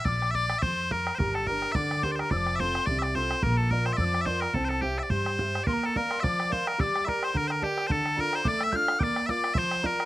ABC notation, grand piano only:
X:1
M:4/4
L:1/8
Q:"Swing" 1/4=215
K:Bblyd
V:1 name="Grand piano"
z8 | G,2 [DGB]2 D,2 [DGB]2 | F,2 [CFA]2 C,2 [CFA]2 | B,2 [FBd]2 F,2 [FBd]2 |
C2 [Gce]2 G,2 [Gce]2 | B,2 [Bdf]2 F,2 [Bdf]2 | G,2 [GBd]2 D,2 [GBd]2 | D,2 [DFA]2 A,2 [DFA]2 |
B,2 [FBd]2 F,2 [FBd]2 |]